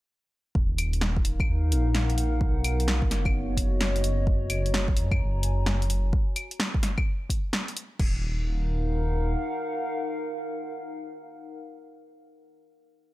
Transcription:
0.55 D#1 D#4, kick
0.70 F5
0.77 A#4, closed hi-hat, claves
0.93 closed hi-hat
1.01 snare
1.17 kick
1.25 closed hi-hat
1.40 F#5, kick, claves
1.48 D#2
1.72 A#1, closed hi-hat
1.95 snare
2.10 closed hi-hat
2.18 closed hi-hat
2.41 B1 B3, kick
2.56 F#4
2.64 closed hi-hat, claves
2.80 closed hi-hat
2.88 C#5, snare
3.02 kick
3.11 F#1, snare, closed hi-hat
3.25 D#5, kick, claves
3.57 F#1, kick, closed hi-hat
3.81 snare
3.96 closed hi-hat
4.04 F#1, closed hi-hat
4.27 kick
4.48 A#5, closed hi-hat, claves
4.66 closed hi-hat
4.74 snare
4.79 G#5
4.88 kick
4.97 F#2, closed hi-hat
5.11 kick, claves
5.20 F#1
5.43 closed hi-hat
5.66 snare
5.82 closed hi-hat
5.90 closed hi-hat
6.13 kick
6.36 closed hi-hat, claves
6.51 closed hi-hat
6.60 snare
6.74 kick
6.83 snare, closed hi-hat
6.98 kick, claves
7.30 kick, closed hi-hat
7.53 snare
7.68 closed hi-hat
7.77 closed hi-hat
8.00 D#1 D#4, kick, crash
8.09 A#4
8.16 F5
8.22 F#5

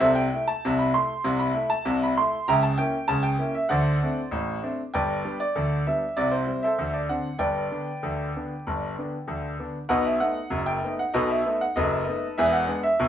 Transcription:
0.00 C2 C3 A4 C5 E5
0.15 G5
0.33 A3 E4
0.48 A5
0.65 C2 C3
0.79 B5
0.94 A3 E4 C6
1.24 C2 C3
1.39 B5
1.54 A3 E4
1.70 A5
1.85 C2 C3
2.03 B5
2.18 A3 E4 C6
2.48 C#2 C#3 E5 G5 A#5
2.63 A5
2.78 A#3 C#4 E4 G5
3.08 C#2 C#3 A5
3.23 G5
3.39 A#3 C#4 E4
3.55 E5
3.69 D2 D3 C5 D5 F#5
4.02 A3 C4 D4
4.31 A1 A2
4.62 A3 C4 D4
4.94 G1 G2 B4 D5 G5
5.25 G3 B3 D4
5.40 D5
5.56 D2 D3
5.87 G3 B3 D4 E5
6.17 C2 C3 D5
6.31 C5
6.47 G3 C4 E4
6.62 A4 C5 E5
6.78 D2 D3
6.94 D5
7.09 D3 C4 D4 F#5
7.39 G1 G2 B4 D5 G5
7.71 D3 B3 D4
8.03 D2 D3
8.36 D3 B3 D4
8.67 G1 G2
8.98 D3 B3 D4
9.28 D2 D3
9.59 D3 B3 D4
9.89 B1 B2 B4 D#5 F#5
10.06 E5
10.20 A3 B3 D#4 F#5
10.50 F#1 F#2
10.66 G5
10.84 A3 B3 D#4
10.99 F#5
11.14 B1 B2 A4 B4 D#5
11.30 E5
11.46 A3 B3 D#4
11.61 F#5
11.76 F#1 F#2 A4 B4 D#5
12.08 A3 B3 D#4
12.38 E1 E2 G#4 B4 E5
12.53 F#5
12.68 G#3 B3 D4
12.83 E5
13.00 B1 B2

